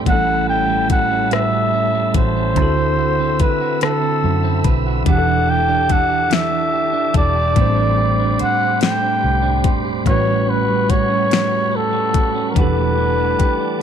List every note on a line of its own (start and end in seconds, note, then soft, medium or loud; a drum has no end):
0.00 0.28 A3 medium
0.00 0.15 D4 medium
0.00 0.52 G4 medium
0.00 0.16 C5 medium
0.05 2.11 A1 loud
0.05 2.52 A2 medium
0.05 1.30 A2 medium
0.05 2.53 G3 medium
0.05 2.54 G3 medium
0.05 0.14 B3 soft
0.05 7.53 E5 medium
0.05 0.46 F#5 loud
0.05 2.55 A5 medium
0.05 5.03 B5 medium
0.05 kick loud
0.05 closed hi-hat medium
0.11 2.55 E4 medium
0.11 2.55 A4 medium
0.15 2.57 C#4 medium
0.28 0.68 G3 medium
0.49 1.10 C#4 soft
0.49 0.87 G5 loud
0.70 1.52 G3 medium
0.90 2.15 F#4 medium
0.90 1.34 F#5 loud
0.90 kick medium
0.90 closed hi-hat medium
1.11 1.73 C#4 medium
1.31 2.65 A2 medium
1.31 2.16 E5 loud
1.31 cross-stick medium
1.31 closed hi-hat medium
1.53 1.94 G3 medium
1.74 2.35 C#4 medium
1.95 2.65 G3 medium
2.14 2.57 A1 medium
2.14 2.80 F#4 medium
2.14 3.43 C5 medium
2.14 kick loud
2.14 closed hi-hat medium
2.37 2.65 C#4 medium
2.55 3.36 D2 medium
2.55 5.02 D3 medium
2.55 3.82 D3 medium
2.55 5.04 C4 medium
2.55 5.03 C4 medium
2.55 5.04 E6 medium
2.55 kick loud
2.55 closed hi-hat medium
2.59 5.04 E4 medium
2.59 5.04 F#4 medium
2.59 5.05 A4 medium
2.77 3.19 C4 medium
2.99 3.61 F#4 medium
3.20 4.01 C4 medium
3.40 4.64 B4 medium
3.40 3.82 B4 medium
3.40 muted fingered electric bass stroke soft
3.40 kick medium
3.40 closed hi-hat medium
3.61 4.23 F#4 medium
3.81 5.06 D3 medium
3.81 4.72 A4 medium
3.81 cross-stick loud
3.81 closed hi-hat medium
4.02 4.43 C4 medium
4.24 4.61 F#2 medium
4.24 4.86 F#4 medium
4.44 5.15 C4 medium
4.64 5.03 B1 medium
4.64 5.89 B4 medium
4.64 kick medium
4.64 closed hi-hat medium
4.87 5.47 F#4 medium
5.04 7.11 E1 medium
5.04 7.51 E3 medium
5.04 6.30 E3 medium
5.04 7.52 D4 medium
5.04 7.53 E4 medium
5.04 10.03 G4 medium
5.04 7.54 A5 soft
5.04 7.54 D6 medium
5.04 kick loud
5.04 closed hi-hat medium
5.09 7.54 G4 medium
5.09 5.16 G#4 medium
5.09 5.51 F#5 loud
5.18 7.58 A4 medium
5.27 5.69 D4 medium
5.47 6.10 G4 medium
5.47 5.93 G5 loud
5.69 6.51 D4 medium
5.89 7.13 A4 medium
5.89 6.35 F#5 loud
5.89 kick medium
5.89 closed hi-hat medium
6.10 6.72 G4 medium
6.30 7.80 E3 medium
6.30 7.16 E5 loud
6.30 snare loud
6.30 closed hi-hat medium
6.51 6.92 D4 medium
6.73 7.35 G4 medium
6.93 7.77 D4 medium
7.14 7.53 E1 medium
7.14 8.01 A4 medium
7.14 8.37 D5 loud
7.14 kick loud
7.14 closed hi-hat medium
7.35 7.97 G4 medium
7.54 8.36 A1 loud
7.54 10.01 A2 medium
7.54 10.02 G3 medium
7.54 8.80 A3 medium
7.54 7.64 B3 medium
7.54 10.04 C5 medium
7.54 12.52 B5 medium
7.54 10.04 D6 medium
7.54 kick loud
7.54 closed hi-hat medium
7.60 10.04 D4 medium
7.60 10.05 C5 medium
7.64 10.06 C4 medium
7.77 8.18 D4 medium
7.98 8.60 G4 medium
8.19 9.00 D4 medium
8.39 9.63 C5 medium
8.39 8.79 F#5 loud
8.39 muted fingered electric bass stroke soft
8.39 closed hi-hat medium
8.60 9.22 G4 medium
8.81 10.26 A3 medium
8.81 9.72 G5 loud
8.81 snare loud
8.81 closed hi-hat medium
9.02 9.41 D4 medium
9.22 9.64 C2 medium
9.22 9.84 G4 medium
9.42 10.14 D4 medium
9.64 10.06 E1 medium
9.64 10.14 C5 medium
9.64 kick loud
9.64 closed hi-hat medium
9.85 10.50 G4 medium
10.04 12.15 A1 medium
10.04 12.51 A2 medium
10.04 11.29 A2 medium
10.04 12.52 G3 medium
10.04 13.82 G3 medium
10.04 12.53 C#4 medium
10.04 13.82 F#5 medium
10.04 12.54 C#6 medium
10.04 kick loud
10.04 closed hi-hat medium
10.08 12.54 F#4 medium
10.08 12.55 B4 medium
10.08 10.51 C#5 medium
10.26 10.68 G3 medium
10.47 11.08 C#4 medium
10.47 10.92 B4 medium
10.68 11.51 G3 medium
10.89 12.13 F#4 medium
10.89 11.77 C#5 medium
10.89 kick medium
10.89 closed hi-hat medium
11.09 11.71 C#4 medium
11.30 12.64 A2 medium
11.30 snare loud
11.30 closed hi-hat medium
11.51 11.92 G3 medium
11.72 12.34 C#4 medium
11.72 12.52 A4 medium
11.93 12.76 G3 medium
12.13 13.39 F#4 medium
12.13 kick loud
12.13 closed hi-hat medium
12.35 12.64 C#4 medium
12.50 13.82 E3 medium
12.50 12.59 A#4 medium
12.55 13.36 E1 loud
12.55 13.80 E3 medium
12.55 13.82 D4 medium
12.55 13.82 B4 medium
12.55 13.82 F#5 medium
12.55 13.82 A5 medium
12.55 13.82 D6 medium
12.55 kick loud
12.55 closed hi-hat medium
12.59 13.82 G4 medium
12.59 13.82 A4 medium
12.76 13.18 A3 medium
12.97 13.60 D4 medium
13.18 13.82 A3 medium
13.39 13.82 G4 medium
13.39 muted fingered electric bass stroke soft
13.39 kick medium
13.39 closed hi-hat medium
13.60 13.82 D4 medium